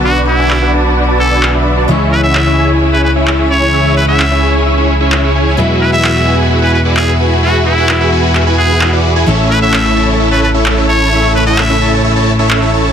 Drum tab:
CP |--x---x-|--x---x-|--x---x-|--x---x-|

CP |--x-x-x-|--x---x-|--x---x-|